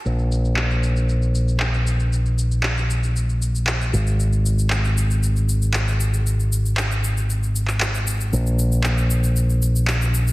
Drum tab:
SH |xxxxxxxxxxxxxxxx|xxxxxxxxxxxxxxxx|xxxxxxxxxxxxxxxx|xxxxxxxxxxxxxxxx|
CP |----x-------x---|----x-------x---|----x-------x---|----x------xx---|

SH |xxxxxxxxxxxxxxxx|
CP |----x-------x---|